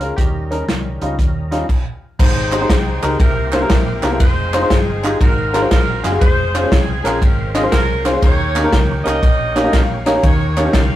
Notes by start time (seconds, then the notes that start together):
Already playing: C#2 G#3 C#4 F4 A#4
0.00 G#3 C#4 F4 A#4, closed hi-hat
0.16 D#2 D#3 G3 C#4 D#4 G4 A#4, kick, closed hi-hat
0.51 G3 C#4 D#4 A#4, closed hi-hat
0.69 C2, snare, closed hi-hat
1.01 C#2 G3 C#4 D#4 F4, closed hi-hat
1.19 D#2, kick, closed hi-hat
1.51 G3 C#4 D#4 F4, snare, closed hi-hat
1.69 kick, crash
2.18 G#1 G#2 G#3 C4 D#4 G4 C5 G5, kick, crash
2.52 G#3 C4 D#4 G4 C5, clap, ride
2.61 G#3 C4 D#4 G4 C5
2.69 C2 C4 D#4 G#4, kick, snare, ride
3.02 C#2 G#3 C4 D#4 G4 A#4, clap, ride
3.19 C2 C3 A#3 C4 E4 G4 A#4 C5, kick, ride
3.52 A#3 C4 E4 G4 C5, snare, clap, ride
3.62 A#3 C4 E4 G4 A#4
3.69 A#1 E4 G4 A#4, kick, snare, ride
4.03 C2 A#3 C4 E4 G4 A#4, snare, clap, ride
4.11 A#3 C4 E4 G4 A#4
4.19 F1 G#3 C4 D#4 F4 G#4 C5, kick, ride
4.53 G#3 C4 D#4 F4 C5, clap, ride
4.62 G#3 C4 D#4 F4 C5
4.69 G1 C4 D#4 G#4, kick, snare, ride
5.03 G#3 C4 D#4 F4 G4, clap, ride
5.19 G#1 G#2 G#3 C4 D#4 F#4 A4 A#4 F5, kick, ride
5.27 A#4
5.53 G#3 C4 F4 F#4 A#4, snare, clap, ride
5.62 G#3 C4 F4 F#4 C5
5.70 A#1 D#4 F#4 A#4, kick, snare, ride
6.03 F#1 G#3 C4 F4 F#4 G#4, snare, clap, ride
6.12 G#3 C4 F4 F#4 G#4
6.20 F1 G#3 F4 G#4 A#4 C5, kick, ride
6.28 C5
6.54 G#3 C4 C#4 F4 C5, clap, ride
6.63 G#3 C4 C#4 F4 C#5
6.70 C2 C4 C#4 G#4, kick, snare, ride
7.04 A#1 G#3 C4 C#4 F4 A#4, clap, ride
7.20 G#1 C#4 A#4, kick, ride
7.54 G#3 C4 C#4 F4 D#5, snare, clap, ride
7.63 G#3 C4 C#4 F4 C5
7.71 C2 C#4 A#4, kick, snare, ride
8.05 G#3 C4 C#4 F4 C5, snare, clap, ride
8.13 G#3 C4 C#4 F4 C5
8.22 D#2 D#3 A#3 C#4 D#4 F4 G4 A#4 C#5, kick, ride
8.29 G4
8.55 A#3 C#4 D#4 G4 C#5, clap, ride
8.63 A#3 C#4 D#4 G4 A#4
8.72 C#2 A#4, kick, snare, ride
9.04 C2 A#3 C#4 D#4 G4 A#4 D#5, clap, ride
9.23 A#1, kick, ride
9.55 A#3 C#4 D#4 G4 C#5, snare, clap, ride
9.64 A#3 C#4 D#4 G4 D#5
9.73 A#1 F5, kick, snare, ride
10.06 A#3 C#4 D#4 G4 C#5 A#5, snare, clap, ride
10.15 A#3 C#4 D#4 G4 C#5
10.23 D#2 D#3 G4 A#4 C#5, kick, ride
10.57 A#3 C#4 D#4 G4 C#5, clap, ride
10.65 A#3 C#4 D#4 G4 C#5
10.73 C#2 A#4 C#5 F5, kick, snare, ride